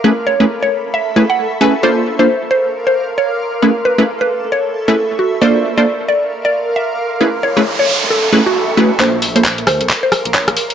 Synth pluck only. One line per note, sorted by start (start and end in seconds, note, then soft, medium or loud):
0.27 0.44 C#5 medium
0.62 0.77 C#5 medium
0.94 1.11 E5 medium
1.30 1.44 F#5 medium
1.61 1.74 G#5 medium
1.83 2.01 C5 medium
2.19 2.34 C5 medium
2.51 2.68 C5 medium
2.87 3.01 C5 medium
3.18 3.35 C#5 medium
3.85 4.02 B4 medium
4.21 4.36 B4 medium
4.52 4.69 C#5 medium
4.88 5.03 A4 medium
5.19 5.32 F#4 medium
5.42 5.59 D5 loud
5.78 5.92 D5 medium
6.08 6.26 D5 medium
6.45 6.59 D5 loud
6.76 6.93 E5 medium
7.43 7.61 C#5 medium
7.79 7.94 C#5 medium
8.10 8.28 A4 medium
8.46 8.61 F#4 loud
8.78 8.90 F#4 medium
9.00 9.17 C5 loud
9.36 9.50 C5 medium
9.67 9.84 C5 medium
10.03 10.18 C5 medium
10.34 10.51 C#5 medium